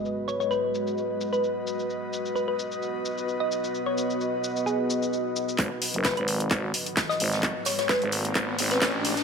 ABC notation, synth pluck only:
X:1
M:4/4
L:1/16
Q:"Swing 16ths" 1/4=130
K:G#m
V:1 name="Synth pluck"
d2 c c B z6 B4 z | z4 B B z6 z d3- | d c3 z4 G4 z4 | z4 B B z6 z d3- |
d2 c c B z6 B4 z |]